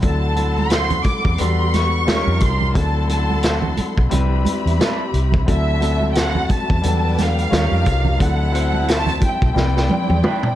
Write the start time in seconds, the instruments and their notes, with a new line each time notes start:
0.01 fingered electric bass D2, grand piano F#3 C4 D4 E4 A4, string section A4 F#5 C6, kick, closed hi-hat, muted conga
0.06 violin section A5
0.35 grand piano F#3 C4 D4 E4 A4, closed hi-hat, muted conga
0.58 violin section C6, high conga
0.70 clean electric guitar E4 F#4 C5, snare, closed hi-hat, muted conga
0.90 closed hi-hat, low conga
1.04 violin section D6, muted fingered electric bass stroke, kick, closed hi-hat, muted conga, high conga
1.25 fingered electric bass E2, kick
1.38 fingered electric bass E2, grand piano G3 B3 D4 F#4 A4, string section G4 F#5 B5, violin section C6, closed hi-hat, low conga
1.74 violin section C#6, snare, closed hi-hat, high conga
2.05 fingered electric bass D#2, grand piano G3 C#4 D#4 F4 A4, clean electric guitar F4 G4 C#5, string section G4 F5 A#5, snare, closed hi-hat, muted conga, high conga
2.16 grand piano A#4
2.27 fingered electric bass F2
2.40 fingered electric bass C2, violin section C6, kick, closed hi-hat, muted conga
2.61 low conga
2.73 fingered electric bass D2, grand piano F#3 C4 D4 E4 A4, string section A4 F#5 C6, violin section A5, kick, closed hi-hat, muted conga
3.07 grand piano F#3 C4 D4 E4 A4, violin section A5, closed hi-hat, muted conga
3.31 high conga
3.43 clean electric guitar E4 F#4 C5, snare, closed hi-hat
3.62 low conga
3.77 muted fingered electric bass stroke, closed hi-hat, muted conga, high conga
3.98 fingered electric bass B1, kick
4.10 fingered electric bass C2, grand piano G3 C4 D4 E4, string section G4 E5 B5, closed hi-hat, muted conga, low conga
4.14 grand piano B4
4.45 closed hi-hat, muted conga, high conga
4.66 fingered electric bass E2, closed hi-hat
4.80 clean electric guitar D4 E4 B4, snare, closed hi-hat, high conga
5.14 fingered electric bass C2, closed hi-hat, muted conga
5.32 kick, low conga
5.46 fingered electric bass D2, grand piano F#3 C4 D4 E4 A4, string section F#4 E5, kick, closed hi-hat
5.50 violin section E5, string section A5
5.79 grand piano F#3 C4 D4 E4, closed hi-hat, muted conga
5.83 grand piano A4
6.02 high conga
6.12 violin section G5, closed hi-hat, muted conga
6.16 clean electric guitar E4 F#4 C5, violin section F#5, snare
6.35 low conga
6.49 violin section A5, muted fingered electric bass stroke, kick, closed hi-hat, muted conga, high conga
6.70 fingered electric bass E2, kick
6.82 fingered electric bass E2, grand piano F#3 G3 B3 D4 A4, string section D4 B4 G5, closed hi-hat, low conga
7.18 violin section F5, snare, closed hi-hat, muted conga, high conga
7.38 closed hi-hat
7.49 fingered electric bass D#2, grand piano G3 C#4 D#4 F4, clean electric guitar F4 G4, string section G4 F5 A#5, snare, closed hi-hat, muted conga, high conga
7.53 grand piano A4, clean electric guitar C#5
7.60 grand piano A#4
7.72 fingered electric bass F2
7.86 fingered electric bass C2, kick, closed hi-hat, muted conga
8.05 low conga
8.18 fingered electric bass D2, grand piano F#3 C4 D4 E4 A4, string section E4 E5 A5, violin section F#5, kick, closed hi-hat
8.52 grand piano F#3 C4 D4 E4 C5, closed hi-hat
8.73 high conga
8.86 clean electric guitar E4 F#4 C5, closed hi-hat, muted conga
8.90 violin section A5, snare
9.07 closed hi-hat, low conga
9.21 muted fingered electric bass stroke, kick, closed hi-hat, muted conga, high conga
9.25 violin section G5
9.42 fingered electric bass B1, kick
9.54 fingered electric bass C2, grand piano G3 C4 D4 E4 B4, string section E4 D5 G5, snare, muted conga, low conga
9.77 snare
9.89 muted fingered electric bass stroke, high tom, muted conga, high conga
10.09 fingered electric bass E2, high tom
10.23 clean electric guitar D4 E4 B4, mid tom, muted conga, high conga
10.43 mid tom